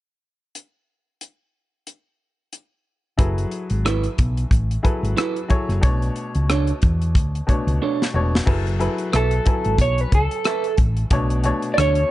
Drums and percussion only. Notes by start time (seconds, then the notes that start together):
0.55 closed hi-hat
1.21 closed hi-hat
1.87 closed hi-hat
2.53 closed hi-hat
3.19 kick, closed hi-hat
3.38 closed hi-hat
3.51 closed hi-hat
3.70 closed hi-hat
3.86 cross-stick, closed hi-hat
4.04 closed hi-hat
4.18 kick, closed hi-hat
4.37 closed hi-hat
4.51 kick, closed hi-hat
4.71 closed hi-hat
4.85 kick, closed hi-hat
5.05 closed hi-hat
5.17 cross-stick, closed hi-hat
5.36 closed hi-hat
5.50 kick, closed hi-hat
5.70 cross-stick, closed hi-hat
5.83 kick, closed hi-hat
6.02 closed hi-hat
6.16 closed hi-hat
6.35 closed hi-hat
6.50 cross-stick, closed hi-hat
6.67 closed hi-hat
6.82 kick, closed hi-hat
7.02 closed hi-hat
7.15 kick, closed hi-hat
7.35 closed hi-hat
7.49 kick, closed hi-hat
7.68 closed hi-hat
8.02 snare
8.35 snare
8.47 kick, crash
8.67 closed hi-hat
8.80 closed hi-hat
8.98 closed hi-hat
9.13 cross-stick, closed hi-hat
9.31 closed hi-hat
9.46 kick, closed hi-hat
9.64 closed hi-hat
9.78 kick, closed hi-hat
9.98 closed hi-hat
10.12 kick, closed hi-hat
10.31 closed hi-hat
10.44 cross-stick, closed hi-hat
10.64 closed hi-hat
10.78 kick, closed hi-hat
10.97 closed hi-hat
11.10 kick, closed hi-hat
11.30 closed hi-hat
11.44 closed hi-hat
11.62 closed hi-hat
11.78 cross-stick, closed hi-hat
11.95 closed hi-hat